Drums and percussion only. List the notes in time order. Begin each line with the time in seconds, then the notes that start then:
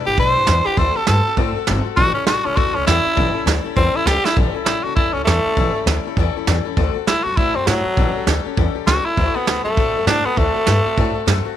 0.18 kick, open hi-hat
0.47 snare, open hi-hat
0.77 kick, open hi-hat
1.07 snare, open hi-hat
1.36 kick, open hi-hat
1.67 snare, open hi-hat
1.97 kick, open hi-hat
2.27 snare, open hi-hat
2.57 kick, open hi-hat
2.87 snare, open hi-hat
3.17 kick, open hi-hat
3.47 snare, open hi-hat
3.77 kick, open hi-hat
4.07 snare, open hi-hat
4.25 snare
4.37 kick, open hi-hat
4.66 snare, open hi-hat
4.97 kick, open hi-hat
5.27 snare, open hi-hat
5.57 kick, open hi-hat
5.87 snare
6.17 kick, open hi-hat
6.47 snare, open hi-hat
6.77 kick, open hi-hat
7.07 snare, open hi-hat
7.37 kick, open hi-hat
7.67 snare
7.97 kick, open hi-hat
8.27 snare, open hi-hat
8.57 kick, open hi-hat
8.87 snare, open hi-hat
9.17 kick, open hi-hat
9.47 snare, open hi-hat
9.77 kick, open hi-hat
10.07 snare
10.37 kick, open hi-hat
10.67 snare
10.97 kick, open hi-hat
11.27 snare, open hi-hat